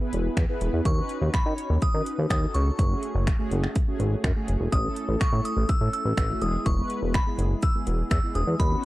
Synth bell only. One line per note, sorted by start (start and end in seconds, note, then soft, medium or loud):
0.86 1.35 C#6 loud
1.34 1.84 B5 medium
1.82 2.29 D#6 loud
2.30 2.55 D#6 loud
2.54 2.77 C#6 medium
2.78 3.24 C#6 medium
4.72 5.22 D#6 loud
5.21 5.46 C#6 loud
5.45 5.70 D#6 loud
5.69 5.92 E6 loud
5.93 6.16 E6 loud
6.18 6.42 E6 loud
6.42 6.67 D#6 medium
6.66 7.11 C#6 loud
7.15 7.64 B5 medium
7.63 8.08 E6 loud
8.11 8.36 E6 loud
8.35 8.60 D#6 medium
8.59 8.85 B5 loud